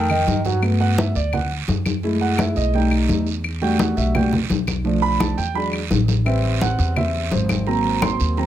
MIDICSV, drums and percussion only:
0, 0, Header, 1, 2, 480
1, 0, Start_track
1, 0, Key_signature, 1, "major"
1, 0, Tempo, 352319
1, 850, Time_signature, 4, 2, 24, 8
1, 11526, End_track
2, 0, Start_track
2, 0, Title_t, "Drums"
2, 132, Note_on_c, 9, 75, 69
2, 140, Note_on_c, 9, 63, 33
2, 269, Note_off_c, 9, 75, 0
2, 276, Note_off_c, 9, 63, 0
2, 371, Note_on_c, 9, 73, 72
2, 379, Note_on_c, 9, 63, 87
2, 507, Note_off_c, 9, 73, 0
2, 515, Note_off_c, 9, 63, 0
2, 609, Note_on_c, 9, 73, 68
2, 618, Note_on_c, 9, 63, 70
2, 745, Note_off_c, 9, 73, 0
2, 754, Note_off_c, 9, 63, 0
2, 849, Note_on_c, 9, 74, 72
2, 853, Note_on_c, 9, 75, 67
2, 859, Note_on_c, 9, 63, 37
2, 986, Note_off_c, 9, 74, 0
2, 989, Note_off_c, 9, 75, 0
2, 995, Note_off_c, 9, 63, 0
2, 1098, Note_on_c, 9, 63, 35
2, 1234, Note_off_c, 9, 63, 0
2, 1332, Note_on_c, 9, 73, 62
2, 1339, Note_on_c, 9, 63, 101
2, 1469, Note_off_c, 9, 73, 0
2, 1476, Note_off_c, 9, 63, 0
2, 1572, Note_on_c, 9, 73, 69
2, 1579, Note_on_c, 9, 63, 34
2, 1709, Note_off_c, 9, 73, 0
2, 1716, Note_off_c, 9, 63, 0
2, 1808, Note_on_c, 9, 75, 68
2, 1812, Note_on_c, 9, 74, 74
2, 1817, Note_on_c, 9, 63, 31
2, 1817, Note_on_c, 9, 64, 75
2, 1945, Note_off_c, 9, 75, 0
2, 1948, Note_off_c, 9, 74, 0
2, 1953, Note_off_c, 9, 63, 0
2, 1953, Note_off_c, 9, 64, 0
2, 2058, Note_on_c, 9, 63, 35
2, 2195, Note_off_c, 9, 63, 0
2, 2289, Note_on_c, 9, 73, 74
2, 2296, Note_on_c, 9, 63, 89
2, 2425, Note_off_c, 9, 73, 0
2, 2433, Note_off_c, 9, 63, 0
2, 2528, Note_on_c, 9, 75, 63
2, 2529, Note_on_c, 9, 73, 68
2, 2535, Note_on_c, 9, 63, 81
2, 2664, Note_off_c, 9, 75, 0
2, 2665, Note_off_c, 9, 73, 0
2, 2671, Note_off_c, 9, 63, 0
2, 2770, Note_on_c, 9, 74, 68
2, 2771, Note_on_c, 9, 63, 36
2, 2906, Note_off_c, 9, 74, 0
2, 2908, Note_off_c, 9, 63, 0
2, 3012, Note_on_c, 9, 63, 36
2, 3149, Note_off_c, 9, 63, 0
2, 3245, Note_on_c, 9, 75, 61
2, 3250, Note_on_c, 9, 73, 69
2, 3252, Note_on_c, 9, 63, 90
2, 3381, Note_off_c, 9, 75, 0
2, 3386, Note_off_c, 9, 73, 0
2, 3388, Note_off_c, 9, 63, 0
2, 3489, Note_on_c, 9, 73, 70
2, 3496, Note_on_c, 9, 63, 35
2, 3625, Note_off_c, 9, 73, 0
2, 3632, Note_off_c, 9, 63, 0
2, 3728, Note_on_c, 9, 74, 73
2, 3736, Note_on_c, 9, 63, 31
2, 3864, Note_off_c, 9, 74, 0
2, 3872, Note_off_c, 9, 63, 0
2, 3969, Note_on_c, 9, 75, 65
2, 3980, Note_on_c, 9, 63, 35
2, 4105, Note_off_c, 9, 75, 0
2, 4116, Note_off_c, 9, 63, 0
2, 4205, Note_on_c, 9, 73, 66
2, 4212, Note_on_c, 9, 63, 77
2, 4341, Note_off_c, 9, 73, 0
2, 4348, Note_off_c, 9, 63, 0
2, 4449, Note_on_c, 9, 73, 66
2, 4585, Note_off_c, 9, 73, 0
2, 4688, Note_on_c, 9, 74, 69
2, 4692, Note_on_c, 9, 75, 66
2, 4696, Note_on_c, 9, 63, 35
2, 4824, Note_off_c, 9, 74, 0
2, 4828, Note_off_c, 9, 75, 0
2, 4832, Note_off_c, 9, 63, 0
2, 4935, Note_on_c, 9, 63, 38
2, 5071, Note_off_c, 9, 63, 0
2, 5167, Note_on_c, 9, 73, 73
2, 5169, Note_on_c, 9, 63, 99
2, 5303, Note_off_c, 9, 73, 0
2, 5305, Note_off_c, 9, 63, 0
2, 5411, Note_on_c, 9, 73, 68
2, 5412, Note_on_c, 9, 63, 34
2, 5547, Note_off_c, 9, 73, 0
2, 5548, Note_off_c, 9, 63, 0
2, 5649, Note_on_c, 9, 74, 70
2, 5651, Note_on_c, 9, 75, 66
2, 5654, Note_on_c, 9, 63, 30
2, 5654, Note_on_c, 9, 64, 76
2, 5785, Note_off_c, 9, 74, 0
2, 5787, Note_off_c, 9, 75, 0
2, 5790, Note_off_c, 9, 63, 0
2, 5790, Note_off_c, 9, 64, 0
2, 5894, Note_on_c, 9, 63, 36
2, 5894, Note_on_c, 9, 64, 76
2, 6030, Note_off_c, 9, 63, 0
2, 6030, Note_off_c, 9, 64, 0
2, 6128, Note_on_c, 9, 73, 79
2, 6135, Note_on_c, 9, 63, 86
2, 6264, Note_off_c, 9, 73, 0
2, 6271, Note_off_c, 9, 63, 0
2, 6367, Note_on_c, 9, 73, 64
2, 6372, Note_on_c, 9, 63, 76
2, 6372, Note_on_c, 9, 75, 67
2, 6503, Note_off_c, 9, 73, 0
2, 6508, Note_off_c, 9, 63, 0
2, 6508, Note_off_c, 9, 75, 0
2, 6607, Note_on_c, 9, 74, 68
2, 6608, Note_on_c, 9, 63, 34
2, 6743, Note_off_c, 9, 74, 0
2, 6745, Note_off_c, 9, 63, 0
2, 6851, Note_on_c, 9, 63, 37
2, 6987, Note_off_c, 9, 63, 0
2, 7087, Note_on_c, 9, 73, 69
2, 7087, Note_on_c, 9, 75, 58
2, 7089, Note_on_c, 9, 63, 103
2, 7223, Note_off_c, 9, 73, 0
2, 7223, Note_off_c, 9, 75, 0
2, 7225, Note_off_c, 9, 63, 0
2, 7330, Note_on_c, 9, 63, 36
2, 7330, Note_on_c, 9, 73, 79
2, 7466, Note_off_c, 9, 63, 0
2, 7466, Note_off_c, 9, 73, 0
2, 7567, Note_on_c, 9, 74, 71
2, 7568, Note_on_c, 9, 63, 30
2, 7703, Note_off_c, 9, 74, 0
2, 7704, Note_off_c, 9, 63, 0
2, 7810, Note_on_c, 9, 63, 35
2, 7811, Note_on_c, 9, 75, 66
2, 7947, Note_off_c, 9, 63, 0
2, 7947, Note_off_c, 9, 75, 0
2, 8047, Note_on_c, 9, 63, 91
2, 8047, Note_on_c, 9, 73, 81
2, 8183, Note_off_c, 9, 73, 0
2, 8184, Note_off_c, 9, 63, 0
2, 8287, Note_on_c, 9, 73, 68
2, 8289, Note_on_c, 9, 63, 69
2, 8423, Note_off_c, 9, 73, 0
2, 8425, Note_off_c, 9, 63, 0
2, 8527, Note_on_c, 9, 63, 35
2, 8528, Note_on_c, 9, 74, 72
2, 8533, Note_on_c, 9, 75, 66
2, 8663, Note_off_c, 9, 63, 0
2, 8665, Note_off_c, 9, 74, 0
2, 8669, Note_off_c, 9, 75, 0
2, 8768, Note_on_c, 9, 63, 38
2, 8904, Note_off_c, 9, 63, 0
2, 9009, Note_on_c, 9, 73, 75
2, 9011, Note_on_c, 9, 63, 91
2, 9145, Note_off_c, 9, 73, 0
2, 9147, Note_off_c, 9, 63, 0
2, 9246, Note_on_c, 9, 73, 77
2, 9253, Note_on_c, 9, 63, 35
2, 9382, Note_off_c, 9, 73, 0
2, 9390, Note_off_c, 9, 63, 0
2, 9488, Note_on_c, 9, 75, 67
2, 9489, Note_on_c, 9, 74, 73
2, 9490, Note_on_c, 9, 63, 33
2, 9490, Note_on_c, 9, 64, 74
2, 9624, Note_off_c, 9, 75, 0
2, 9626, Note_off_c, 9, 74, 0
2, 9627, Note_off_c, 9, 63, 0
2, 9627, Note_off_c, 9, 64, 0
2, 9732, Note_on_c, 9, 63, 35
2, 9868, Note_off_c, 9, 63, 0
2, 9967, Note_on_c, 9, 63, 88
2, 9970, Note_on_c, 9, 73, 74
2, 10103, Note_off_c, 9, 63, 0
2, 10107, Note_off_c, 9, 73, 0
2, 10206, Note_on_c, 9, 63, 83
2, 10207, Note_on_c, 9, 73, 66
2, 10209, Note_on_c, 9, 75, 66
2, 10342, Note_off_c, 9, 63, 0
2, 10343, Note_off_c, 9, 73, 0
2, 10346, Note_off_c, 9, 75, 0
2, 10444, Note_on_c, 9, 74, 64
2, 10447, Note_on_c, 9, 63, 33
2, 10580, Note_off_c, 9, 74, 0
2, 10583, Note_off_c, 9, 63, 0
2, 10691, Note_on_c, 9, 63, 38
2, 10827, Note_off_c, 9, 63, 0
2, 10927, Note_on_c, 9, 63, 96
2, 10929, Note_on_c, 9, 73, 69
2, 10930, Note_on_c, 9, 75, 68
2, 11064, Note_off_c, 9, 63, 0
2, 11065, Note_off_c, 9, 73, 0
2, 11066, Note_off_c, 9, 75, 0
2, 11170, Note_on_c, 9, 73, 73
2, 11171, Note_on_c, 9, 63, 38
2, 11306, Note_off_c, 9, 73, 0
2, 11307, Note_off_c, 9, 63, 0
2, 11408, Note_on_c, 9, 74, 76
2, 11409, Note_on_c, 9, 63, 33
2, 11526, Note_off_c, 9, 63, 0
2, 11526, Note_off_c, 9, 74, 0
2, 11526, End_track
0, 0, End_of_file